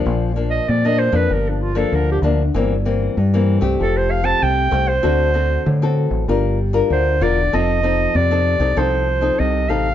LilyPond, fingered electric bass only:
\new Staff \with { instrumentName = "Fingered electric bass" } { \clef bass \time 4/4 \key bes \major \tempo 4 = 96 bes,,4 bes,8. f,16 g,,4 d,8 d,8 | g,,4 g,8. c,16 f,,4 c,8 c,8 | d,4 d8. a,,16 g,,4 d,8 e,,8 | f,,4 f,8. c,16 c,4 c,8 a,,8 | }